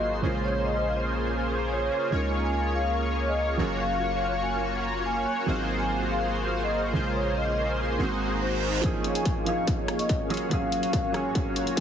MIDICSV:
0, 0, Header, 1, 8, 480
1, 0, Start_track
1, 0, Key_signature, -5, "major"
1, 0, Tempo, 419580
1, 508, Time_signature, 4, 2, 24, 8
1, 13502, End_track
2, 0, Start_track
2, 0, Title_t, "Analog synth pad"
2, 0, Program_c, 0, 89
2, 0, Note_on_c, 0, 70, 80
2, 0, Note_on_c, 0, 77, 75
2, 0, Note_on_c, 0, 84, 94
2, 222, Note_off_c, 0, 70, 0
2, 222, Note_off_c, 0, 77, 0
2, 269, Note_on_c, 0, 70, 83
2, 269, Note_on_c, 0, 80, 77
2, 2391, Note_off_c, 0, 84, 0
2, 2426, Note_on_c, 0, 85, 90
2, 2427, Note_on_c, 0, 77, 77
2, 4070, Note_off_c, 0, 80, 0
2, 4090, Note_off_c, 0, 85, 0
2, 4105, Note_on_c, 0, 85, 90
2, 6223, Note_off_c, 0, 70, 0
2, 6229, Note_off_c, 0, 77, 0
2, 6245, Note_off_c, 0, 85, 0
2, 6268, Note_on_c, 0, 77, 75
2, 6268, Note_on_c, 0, 84, 89
2, 6269, Note_on_c, 0, 70, 83
2, 7931, Note_off_c, 0, 77, 0
2, 7932, Note_off_c, 0, 84, 0
2, 7946, Note_on_c, 0, 80, 78
2, 7947, Note_on_c, 0, 84, 93
2, 9149, Note_on_c, 0, 78, 70
2, 10070, Note_off_c, 0, 70, 0
2, 10086, Note_off_c, 0, 80, 0
2, 10086, Note_off_c, 0, 84, 0
2, 10099, Note_off_c, 0, 78, 0
2, 10108, Note_on_c, 0, 77, 93
2, 10109, Note_on_c, 0, 70, 81
2, 10110, Note_on_c, 0, 61, 84
2, 10110, Note_on_c, 0, 68, 77
2, 11772, Note_off_c, 0, 68, 0
2, 11789, Note_on_c, 0, 54, 78
2, 13502, Note_off_c, 0, 54, 0
2, 13502, Note_off_c, 0, 61, 0
2, 13502, Note_off_c, 0, 70, 0
2, 13502, Note_off_c, 0, 77, 0
2, 13502, End_track
3, 0, Start_track
3, 0, Title_t, "Vibraphone"
3, 0, Program_c, 1, 11
3, 505, Note_on_c, 1, 73, 80
3, 686, Note_off_c, 1, 73, 0
3, 744, Note_on_c, 1, 75, 80
3, 825, Note_off_c, 1, 75, 0
3, 872, Note_on_c, 1, 75, 70
3, 946, Note_off_c, 1, 75, 0
3, 1947, Note_on_c, 1, 73, 86
3, 2428, Note_off_c, 1, 73, 0
3, 2792, Note_on_c, 1, 80, 77
3, 2967, Note_off_c, 1, 80, 0
3, 3147, Note_on_c, 1, 77, 84
3, 3327, Note_off_c, 1, 77, 0
3, 3753, Note_on_c, 1, 75, 83
3, 3928, Note_off_c, 1, 75, 0
3, 4349, Note_on_c, 1, 77, 81
3, 4428, Note_off_c, 1, 77, 0
3, 4476, Note_on_c, 1, 77, 66
3, 4548, Note_off_c, 1, 77, 0
3, 4713, Note_on_c, 1, 77, 84
3, 5046, Note_off_c, 1, 77, 0
3, 5068, Note_on_c, 1, 80, 85
3, 5247, Note_off_c, 1, 80, 0
3, 5786, Note_on_c, 1, 80, 89
3, 5867, Note_off_c, 1, 80, 0
3, 5911, Note_on_c, 1, 80, 70
3, 5986, Note_off_c, 1, 80, 0
3, 6630, Note_on_c, 1, 80, 80
3, 6806, Note_off_c, 1, 80, 0
3, 6987, Note_on_c, 1, 77, 85
3, 7167, Note_off_c, 1, 77, 0
3, 7590, Note_on_c, 1, 75, 86
3, 7766, Note_off_c, 1, 75, 0
3, 8189, Note_on_c, 1, 73, 84
3, 8368, Note_off_c, 1, 73, 0
3, 8429, Note_on_c, 1, 75, 82
3, 8508, Note_off_c, 1, 75, 0
3, 8553, Note_on_c, 1, 75, 69
3, 8627, Note_off_c, 1, 75, 0
3, 9627, Note_on_c, 1, 72, 88
3, 10108, Note_off_c, 1, 72, 0
3, 10471, Note_on_c, 1, 80, 78
3, 10647, Note_off_c, 1, 80, 0
3, 10829, Note_on_c, 1, 77, 89
3, 11008, Note_off_c, 1, 77, 0
3, 11431, Note_on_c, 1, 75, 83
3, 11607, Note_off_c, 1, 75, 0
3, 12027, Note_on_c, 1, 77, 84
3, 12107, Note_off_c, 1, 77, 0
3, 12150, Note_on_c, 1, 77, 69
3, 12225, Note_off_c, 1, 77, 0
3, 12390, Note_on_c, 1, 77, 81
3, 12724, Note_off_c, 1, 77, 0
3, 12744, Note_on_c, 1, 80, 89
3, 12925, Note_off_c, 1, 80, 0
3, 13502, End_track
4, 0, Start_track
4, 0, Title_t, "Analog polysynth"
4, 0, Program_c, 2, 90
4, 0, Note_on_c, 2, 58, 73
4, 0, Note_on_c, 2, 65, 67
4, 0, Note_on_c, 2, 66, 68
4, 0, Note_on_c, 2, 68, 70
4, 0, Note_on_c, 2, 72, 83
4, 239, Note_off_c, 2, 58, 0
4, 240, Note_off_c, 2, 65, 0
4, 240, Note_off_c, 2, 66, 0
4, 240, Note_off_c, 2, 68, 0
4, 240, Note_off_c, 2, 72, 0
4, 268, Note_on_c, 2, 58, 73
4, 268, Note_on_c, 2, 65, 65
4, 268, Note_on_c, 2, 68, 68
4, 268, Note_on_c, 2, 72, 84
4, 269, Note_on_c, 2, 61, 72
4, 2400, Note_off_c, 2, 58, 0
4, 2400, Note_off_c, 2, 65, 0
4, 2400, Note_off_c, 2, 68, 0
4, 2400, Note_off_c, 2, 72, 0
4, 2401, Note_off_c, 2, 61, 0
4, 2427, Note_on_c, 2, 58, 72
4, 2428, Note_on_c, 2, 61, 68
4, 2428, Note_on_c, 2, 65, 66
4, 2428, Note_on_c, 2, 68, 71
4, 2428, Note_on_c, 2, 73, 83
4, 4080, Note_off_c, 2, 58, 0
4, 4080, Note_off_c, 2, 61, 0
4, 4080, Note_off_c, 2, 65, 0
4, 4080, Note_off_c, 2, 68, 0
4, 4080, Note_off_c, 2, 73, 0
4, 4109, Note_on_c, 2, 58, 76
4, 4109, Note_on_c, 2, 61, 68
4, 4109, Note_on_c, 2, 65, 67
4, 4109, Note_on_c, 2, 66, 70
4, 4109, Note_on_c, 2, 73, 83
4, 6241, Note_off_c, 2, 58, 0
4, 6241, Note_off_c, 2, 61, 0
4, 6241, Note_off_c, 2, 65, 0
4, 6241, Note_off_c, 2, 66, 0
4, 6241, Note_off_c, 2, 73, 0
4, 6268, Note_on_c, 2, 65, 66
4, 6268, Note_on_c, 2, 66, 71
4, 6269, Note_on_c, 2, 58, 76
4, 6269, Note_on_c, 2, 68, 71
4, 6269, Note_on_c, 2, 72, 79
4, 7920, Note_off_c, 2, 65, 0
4, 7920, Note_off_c, 2, 66, 0
4, 7921, Note_off_c, 2, 58, 0
4, 7921, Note_off_c, 2, 68, 0
4, 7921, Note_off_c, 2, 72, 0
4, 7948, Note_on_c, 2, 58, 77
4, 7948, Note_on_c, 2, 65, 70
4, 7948, Note_on_c, 2, 68, 69
4, 7948, Note_on_c, 2, 72, 82
4, 7949, Note_on_c, 2, 61, 68
4, 9120, Note_off_c, 2, 58, 0
4, 9120, Note_off_c, 2, 65, 0
4, 9120, Note_off_c, 2, 68, 0
4, 9120, Note_off_c, 2, 72, 0
4, 9121, Note_off_c, 2, 61, 0
4, 9148, Note_on_c, 2, 58, 73
4, 9148, Note_on_c, 2, 63, 68
4, 9148, Note_on_c, 2, 66, 69
4, 9148, Note_on_c, 2, 68, 67
4, 9148, Note_on_c, 2, 72, 85
4, 10080, Note_off_c, 2, 58, 0
4, 10080, Note_off_c, 2, 63, 0
4, 10080, Note_off_c, 2, 66, 0
4, 10080, Note_off_c, 2, 68, 0
4, 10080, Note_off_c, 2, 72, 0
4, 10106, Note_on_c, 2, 65, 68
4, 10107, Note_on_c, 2, 58, 77
4, 10107, Note_on_c, 2, 61, 68
4, 10107, Note_on_c, 2, 68, 70
4, 10107, Note_on_c, 2, 73, 81
4, 10799, Note_off_c, 2, 65, 0
4, 10800, Note_off_c, 2, 58, 0
4, 10800, Note_off_c, 2, 61, 0
4, 10800, Note_off_c, 2, 68, 0
4, 10800, Note_off_c, 2, 73, 0
4, 10826, Note_on_c, 2, 61, 75
4, 10826, Note_on_c, 2, 65, 72
4, 10826, Note_on_c, 2, 68, 74
4, 10826, Note_on_c, 2, 73, 84
4, 10827, Note_on_c, 2, 58, 80
4, 11764, Note_off_c, 2, 58, 0
4, 11764, Note_off_c, 2, 61, 0
4, 11764, Note_off_c, 2, 65, 0
4, 11764, Note_off_c, 2, 68, 0
4, 11764, Note_off_c, 2, 73, 0
4, 11785, Note_on_c, 2, 65, 77
4, 11786, Note_on_c, 2, 58, 81
4, 11786, Note_on_c, 2, 61, 77
4, 11786, Note_on_c, 2, 66, 71
4, 11786, Note_on_c, 2, 73, 90
4, 11999, Note_off_c, 2, 58, 0
4, 11999, Note_off_c, 2, 61, 0
4, 11999, Note_off_c, 2, 65, 0
4, 11999, Note_off_c, 2, 66, 0
4, 11999, Note_off_c, 2, 73, 0
4, 12025, Note_on_c, 2, 58, 78
4, 12025, Note_on_c, 2, 61, 69
4, 12025, Note_on_c, 2, 65, 71
4, 12025, Note_on_c, 2, 66, 71
4, 12025, Note_on_c, 2, 73, 82
4, 12719, Note_off_c, 2, 58, 0
4, 12719, Note_off_c, 2, 61, 0
4, 12719, Note_off_c, 2, 65, 0
4, 12719, Note_off_c, 2, 66, 0
4, 12719, Note_off_c, 2, 73, 0
4, 12745, Note_on_c, 2, 65, 71
4, 12745, Note_on_c, 2, 73, 90
4, 12746, Note_on_c, 2, 58, 82
4, 12746, Note_on_c, 2, 61, 75
4, 12746, Note_on_c, 2, 66, 71
4, 13502, Note_off_c, 2, 58, 0
4, 13502, Note_off_c, 2, 61, 0
4, 13502, Note_off_c, 2, 65, 0
4, 13502, Note_off_c, 2, 66, 0
4, 13502, Note_off_c, 2, 73, 0
4, 13502, End_track
5, 0, Start_track
5, 0, Title_t, "Felt piano"
5, 0, Program_c, 3, 0
5, 0, Control_c, 3, 64, 127
5, 0, Note_on_c, 3, 54, 72
5, 0, Note_on_c, 3, 58, 64
5, 0, Note_on_c, 3, 60, 66
5, 0, Note_on_c, 3, 63, 67
5, 0, Note_on_c, 3, 77, 83
5, 230, Note_off_c, 3, 54, 0
5, 236, Note_off_c, 3, 58, 0
5, 242, Note_off_c, 3, 60, 0
5, 248, Note_off_c, 3, 63, 0
5, 248, Note_on_c, 3, 49, 70
5, 254, Note_off_c, 3, 77, 0
5, 259, Note_on_c, 3, 56, 63
5, 270, Note_on_c, 3, 58, 66
5, 281, Control_c, 3, 64, 0
5, 283, Note_on_c, 3, 70, 67
5, 293, Note_on_c, 3, 65, 77
5, 468, Control_c, 3, 64, 127
5, 2389, Note_off_c, 3, 56, 0
5, 2390, Note_off_c, 3, 49, 0
5, 2401, Note_off_c, 3, 58, 0
5, 2407, Note_on_c, 3, 56, 77
5, 2408, Note_off_c, 3, 70, 0
5, 2413, Note_off_c, 3, 65, 0
5, 2418, Note_on_c, 3, 61, 67
5, 2430, Note_on_c, 3, 63, 67
5, 2440, Note_on_c, 3, 65, 66
5, 2443, Control_c, 3, 64, 0
5, 2452, Note_on_c, 3, 70, 82
5, 2634, Control_c, 3, 64, 127
5, 4070, Note_off_c, 3, 56, 0
5, 4075, Note_off_c, 3, 61, 0
5, 4081, Note_off_c, 3, 63, 0
5, 4086, Note_off_c, 3, 65, 0
5, 4086, Note_on_c, 3, 54, 72
5, 4092, Note_off_c, 3, 70, 0
5, 4098, Note_on_c, 3, 58, 62
5, 4110, Note_on_c, 3, 61, 64
5, 4121, Note_on_c, 3, 77, 62
5, 4124, Control_c, 3, 64, 0
5, 4132, Note_on_c, 3, 68, 79
5, 4335, Control_c, 3, 64, 127
5, 6228, Note_off_c, 3, 54, 0
5, 6235, Note_off_c, 3, 58, 0
5, 6241, Note_off_c, 3, 61, 0
5, 6245, Note_on_c, 3, 54, 73
5, 6247, Note_off_c, 3, 77, 0
5, 6253, Note_off_c, 3, 68, 0
5, 6257, Note_on_c, 3, 58, 70
5, 6267, Note_on_c, 3, 60, 68
5, 6279, Note_on_c, 3, 63, 68
5, 6280, Control_c, 3, 64, 0
5, 6289, Note_on_c, 3, 77, 82
5, 6497, Control_c, 3, 64, 127
5, 7909, Note_off_c, 3, 54, 0
5, 7915, Note_off_c, 3, 58, 0
5, 7920, Note_off_c, 3, 60, 0
5, 7925, Note_on_c, 3, 49, 71
5, 7926, Note_off_c, 3, 63, 0
5, 7931, Note_off_c, 3, 77, 0
5, 7937, Note_on_c, 3, 56, 64
5, 7947, Note_on_c, 3, 58, 64
5, 7959, Note_on_c, 3, 72, 66
5, 7962, Control_c, 3, 64, 0
5, 7972, Note_on_c, 3, 65, 78
5, 8179, Control_c, 3, 64, 127
5, 9109, Note_off_c, 3, 49, 0
5, 9115, Note_off_c, 3, 56, 0
5, 9120, Note_off_c, 3, 58, 0
5, 9126, Note_off_c, 3, 72, 0
5, 9127, Note_on_c, 3, 51, 73
5, 9132, Note_off_c, 3, 65, 0
5, 9139, Note_on_c, 3, 56, 70
5, 9150, Note_on_c, 3, 58, 70
5, 9161, Control_c, 3, 64, 0
5, 9162, Note_on_c, 3, 60, 71
5, 9173, Note_on_c, 3, 66, 85
5, 9356, Control_c, 3, 64, 127
5, 10070, Note_off_c, 3, 51, 0
5, 10076, Note_off_c, 3, 56, 0
5, 10080, Note_off_c, 3, 58, 0
5, 10085, Note_on_c, 3, 53, 90
5, 10087, Note_off_c, 3, 60, 0
5, 10093, Note_off_c, 3, 66, 0
5, 10097, Note_on_c, 3, 58, 80
5, 10109, Note_on_c, 3, 61, 82
5, 10120, Note_on_c, 3, 63, 82
5, 10121, Control_c, 3, 64, 0
5, 10131, Note_on_c, 3, 68, 97
5, 10289, Control_c, 3, 64, 127
5, 10789, Note_off_c, 3, 53, 0
5, 10795, Note_off_c, 3, 58, 0
5, 10801, Note_off_c, 3, 61, 0
5, 10806, Note_off_c, 3, 63, 0
5, 10808, Note_on_c, 3, 53, 69
5, 10812, Note_off_c, 3, 68, 0
5, 10819, Note_on_c, 3, 58, 66
5, 10830, Note_on_c, 3, 61, 61
5, 10842, Note_on_c, 3, 63, 61
5, 10853, Note_on_c, 3, 68, 71
5, 11750, Note_off_c, 3, 53, 0
5, 11756, Note_off_c, 3, 58, 0
5, 11761, Note_off_c, 3, 61, 0
5, 11768, Note_off_c, 3, 63, 0
5, 11773, Note_off_c, 3, 68, 0
5, 11777, Note_on_c, 3, 54, 88
5, 11783, Note_on_c, 3, 58, 76
5, 11788, Note_on_c, 3, 61, 80
5, 11795, Note_on_c, 3, 65, 81
5, 11799, Note_on_c, 3, 68, 97
5, 11804, Control_c, 3, 64, 0
5, 11968, Control_c, 3, 64, 127
5, 11988, Note_off_c, 3, 54, 0
5, 11998, Note_off_c, 3, 58, 0
5, 12000, Note_off_c, 3, 61, 0
5, 12004, Note_off_c, 3, 65, 0
5, 12005, Note_on_c, 3, 54, 87
5, 12006, Note_off_c, 3, 68, 0
5, 12015, Note_on_c, 3, 58, 80
5, 12026, Note_on_c, 3, 61, 80
5, 12039, Note_on_c, 3, 77, 81
5, 12051, Note_on_c, 3, 68, 95
5, 12708, Note_off_c, 3, 54, 0
5, 12714, Note_off_c, 3, 58, 0
5, 12719, Note_off_c, 3, 61, 0
5, 12725, Note_on_c, 3, 54, 80
5, 12726, Note_off_c, 3, 77, 0
5, 12732, Note_off_c, 3, 68, 0
5, 12737, Note_on_c, 3, 58, 73
5, 12748, Note_on_c, 3, 61, 74
5, 12760, Note_on_c, 3, 77, 71
5, 12771, Note_on_c, 3, 68, 88
5, 13502, Note_off_c, 3, 54, 0
5, 13502, Note_off_c, 3, 58, 0
5, 13502, Note_off_c, 3, 61, 0
5, 13502, Note_off_c, 3, 68, 0
5, 13502, Note_off_c, 3, 77, 0
5, 13502, End_track
6, 0, Start_track
6, 0, Title_t, "808-style bass"
6, 0, Program_c, 4, 38
6, 0, Note_on_c, 4, 32, 88
6, 245, Note_off_c, 4, 32, 0
6, 268, Note_on_c, 4, 34, 86
6, 2165, Note_off_c, 4, 34, 0
6, 2427, Note_on_c, 4, 37, 85
6, 4085, Note_off_c, 4, 37, 0
6, 4108, Note_on_c, 4, 30, 81
6, 6005, Note_off_c, 4, 30, 0
6, 6267, Note_on_c, 4, 32, 85
6, 7924, Note_off_c, 4, 32, 0
6, 7948, Note_on_c, 4, 34, 81
6, 9125, Note_off_c, 4, 34, 0
6, 9148, Note_on_c, 4, 32, 90
6, 10085, Note_off_c, 4, 32, 0
6, 13502, End_track
7, 0, Start_track
7, 0, Title_t, "Reverse cymbal"
7, 0, Program_c, 5, 119
7, 9147, Note_on_c, 5, 60, 73
7, 10108, Note_off_c, 5, 60, 0
7, 13502, End_track
8, 0, Start_track
8, 0, Title_t, "Drums"
8, 10107, Note_on_c, 9, 42, 77
8, 10108, Note_on_c, 9, 36, 96
8, 10221, Note_off_c, 9, 42, 0
8, 10222, Note_off_c, 9, 36, 0
8, 10346, Note_on_c, 9, 42, 64
8, 10461, Note_off_c, 9, 42, 0
8, 10470, Note_on_c, 9, 42, 66
8, 10585, Note_off_c, 9, 42, 0
8, 10587, Note_on_c, 9, 42, 77
8, 10588, Note_on_c, 9, 36, 90
8, 10701, Note_off_c, 9, 42, 0
8, 10702, Note_off_c, 9, 36, 0
8, 10827, Note_on_c, 9, 42, 62
8, 10942, Note_off_c, 9, 42, 0
8, 11067, Note_on_c, 9, 42, 76
8, 11068, Note_on_c, 9, 36, 91
8, 11182, Note_off_c, 9, 36, 0
8, 11182, Note_off_c, 9, 42, 0
8, 11306, Note_on_c, 9, 37, 62
8, 11306, Note_on_c, 9, 42, 67
8, 11421, Note_off_c, 9, 37, 0
8, 11421, Note_off_c, 9, 42, 0
8, 11431, Note_on_c, 9, 42, 65
8, 11545, Note_off_c, 9, 42, 0
8, 11547, Note_on_c, 9, 42, 80
8, 11548, Note_on_c, 9, 36, 99
8, 11661, Note_off_c, 9, 42, 0
8, 11662, Note_off_c, 9, 36, 0
8, 11787, Note_on_c, 9, 42, 49
8, 11827, Note_off_c, 9, 42, 0
8, 11827, Note_on_c, 9, 42, 67
8, 11865, Note_off_c, 9, 42, 0
8, 11865, Note_on_c, 9, 42, 81
8, 11980, Note_off_c, 9, 42, 0
8, 12025, Note_on_c, 9, 42, 74
8, 12027, Note_on_c, 9, 36, 94
8, 12140, Note_off_c, 9, 42, 0
8, 12142, Note_off_c, 9, 36, 0
8, 12266, Note_on_c, 9, 42, 66
8, 12381, Note_off_c, 9, 42, 0
8, 12390, Note_on_c, 9, 42, 66
8, 12504, Note_off_c, 9, 42, 0
8, 12506, Note_on_c, 9, 42, 72
8, 12507, Note_on_c, 9, 36, 93
8, 12621, Note_off_c, 9, 36, 0
8, 12621, Note_off_c, 9, 42, 0
8, 12747, Note_on_c, 9, 37, 70
8, 12747, Note_on_c, 9, 42, 63
8, 12861, Note_off_c, 9, 37, 0
8, 12861, Note_off_c, 9, 42, 0
8, 12986, Note_on_c, 9, 42, 73
8, 12987, Note_on_c, 9, 36, 92
8, 13101, Note_off_c, 9, 36, 0
8, 13101, Note_off_c, 9, 42, 0
8, 13226, Note_on_c, 9, 42, 68
8, 13340, Note_off_c, 9, 42, 0
8, 13351, Note_on_c, 9, 42, 61
8, 13465, Note_off_c, 9, 42, 0
8, 13466, Note_on_c, 9, 42, 78
8, 13467, Note_on_c, 9, 36, 97
8, 13502, Note_off_c, 9, 36, 0
8, 13502, Note_off_c, 9, 42, 0
8, 13502, End_track
0, 0, End_of_file